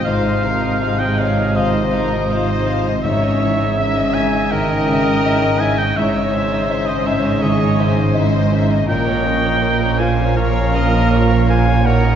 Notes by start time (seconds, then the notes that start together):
Already playing: C3 D#3 G#3 D#4 F4 C5
0.05 G#1 G#2 C3 F3 D#4 F4 C5 F5
0.24 C4 D#4 D#5
0.44 D#3 C4 D#4 F4 A#4 F5
0.62 C4 D#4 D#5
0.81 D#4 F4 G#4 D#5 F5
0.99 C4 D#4 D#5 G5
1.19 D#4 F4 C#5 D#5 F5
1.38 C4 D#4 D#5
1.56 G#2 D#3 D#4 F4 C5 D#5 F5
1.73 C4 D#4 D#5
1.93 D#3 C4 D#4 F4 A#4 F5
2.11 C4 D#4 D#5
2.29 D#4 F4 C5 D#5 F5
2.48 C4 D#4 D#5
2.67 C4 D#4 F4 C5 F5
2.87 C4 D#4 D#5
3.03 G#1 G#2 C#3 C#4 D#4 C#5 E5
3.07 E4
3.23 C#4 D#4 D#5
3.41 E3 C#4 D#4 E4 E5
3.60 C#4 D#4 D#5
3.79 D#4 E4 G#4 E5
3.96 C#4 D#4 D#5
4.14 C#4 D#4 E4 C#5 E5 G#5
4.34 C#4 D#4 D#5
4.49 G#2 D#3 D#4 E4 A#4 D#5 E5 G5
4.68 C#4 D#4 D#5
4.85 C#3 C#4 D#4 E4 E5
5.03 C#4 D#4 D#5
5.22 D#4 E4 D#5 E5
5.41 C#4 D#4 D#5
5.58 C#4 D#4 E4 C#5 E5 G#5
5.62 E5
5.78 C#4 D#4 D#5 G5
5.95 G#1 G#2 C#3 C#4 D#4 E4 C#5 E5
6.13 C#4 D#4 D#5
6.30 C#4 D#4 E4 C5
6.34 E5
6.49 C#4 D#4 D#5
6.67 D#4 E4 D#5 E5
6.86 C#4 D#4 C5 D#5
7.04 C#4 D#4 E4 C#5 E5
7.24 C#4 D#4 D#5
7.40 G#2 D#3 D#4 E4 G#4 C#5 D#5 E5
7.59 C#4 D#4 D#5
7.79 C#4 D#4 E4 C5 E5
7.97 C#4 D#4 D#5
8.15 D#4 E4 D#5 E5
8.34 C#4 D#4 D#5
8.51 C#4 D#4 E4 E5
8.71 C#4 D#4 D#5
8.87 A#1 A#2 F3 C#4 F4 A#4 D#5 G5
8.91 A#3
9.07 C#4 A#4 C#5
9.25 F3 A#3 C#4 F4 A#4 C#5
9.44 C#4 A#4 C#5
9.62 A#3 F4 A#4 C#5
9.82 C#4 A#4 C#5
9.99 A#3 C#4 F4 A#4 C5 F5 G#5
10.19 C#4 A#4 C#5
10.35 A#2 F3 A#3 F4 A#4 C#5 F5
10.54 C#4 A#4 C#5
10.73 F3 A#3 C#4 F4 A#4 D#5
10.92 C#4 A#4 C#5
11.10 A#3 F4 A#4 C#5
11.30 C#4 A#4 C#5
11.48 A#3 C#4 F4 A#4 C5 F5 G#5
11.67 C#4 A#4 C#5
11.84 A#2 F#3 D#4 F#4 A#4 C#5 F#5
12.03 C#4 D#4 D#5